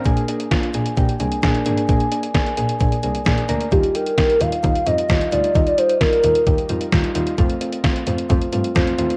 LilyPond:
<<
  \new Staff \with { instrumentName = "Soft synth lead" } { \time 4/4 \key bes \major \tempo 4 = 131 r1 | r1 | g'8 bes'4 f''4 ees''4 d''8 | ees''16 d''16 c''8 bes'2 r4 |
r1 | }
  \new Staff \with { instrumentName = "Synth keys" } { \time 4/4 \key bes \major <bes d' aes'>8 <bes d' aes'>8 <bes d' f'>8 <bes d' aes'>8 <bes d' g'>8 <bes d' aes'>8 <bes d' aes'>8 <bes d' aes'>8 | <bes d' aes'>8 <bes d' aes'>8 <bes d' aes'>8 <bes d' aes'>8 <bes d' aes'>8 <bes d' aes'>8 <bes d' aes'>8 <bes d' bes'>8 | <g ees' f'>8 <g ees' g'>8 <g ees' g'>8 <g ees' f'>8 <g ees' f'>8 <g ees' f'>8 <g ees' f'>8 <g ees' f'>8 | <g ees' f'>8 <g ees' f'>8 <g ees' f'>8 <g ees' f'>8 <g ees' g'>8 <g ees' f'>8 <g ees' f'>8 <g ees' f'>8 |
<a c' f'>8 <a c' f'>8 <a c' f'>8 <a c' f'>8 <a c' f'>8 <a c' f'>8 <a c' f'>8 <a c' f'>8 | }
  \new Staff \with { instrumentName = "Double bass" } { \clef bass \time 4/4 \key bes \major bes,,4~ bes,,16 r16 bes,,8 bes,,8 c,8 bes,,8 aes,,8 | bes,,4~ bes,,16 r16 bes,,8 bes,,8 c,8 bes,,8 d,8 | ees,4~ ees,16 r16 ees,8 ees,8 f,8 ees,8 d,8 | ees,4~ ees,16 r16 ees,8 ees,8 f,8 ees,8 ees,8 |
f,4~ f,16 r16 f,8 f,8 g,8 f,8 ees,8 | }
  \new DrumStaff \with { instrumentName = "Drums" } \drummode { \time 4/4 <hh bd>16 hh16 hh16 hh16 <hh bd sn>16 hh16 hh16 hh16 <hh bd>16 hh16 hh16 hh16 <hh bd sn>16 hh16 hh16 hh16 | <hh bd>16 hh16 hh16 hh16 <hh bd sn>16 hh16 hh16 hh16 <hh bd>16 hh16 hh16 hh16 <hh bd sn>16 hh16 hh16 hh16 | <hh bd>16 hh16 hh16 hh16 <hh bd sn>16 hh16 hh16 hh16 <hh bd>16 hh16 hh16 hh16 <hh bd sn>16 hh16 hh16 hh16 | <hh bd>16 hh16 hh16 hh16 <hh bd sn>16 hh16 hh16 hh16 <hh bd>16 hh16 hh16 hh16 <hh bd sn>16 hh16 hh16 hh16 |
<hh bd>16 hh16 hh16 hh16 <hh bd sn>16 hh16 hh16 hh16 <hh bd>16 hh16 hh16 hh16 <hh bd sn>16 hh16 hh16 hh16 | }
>>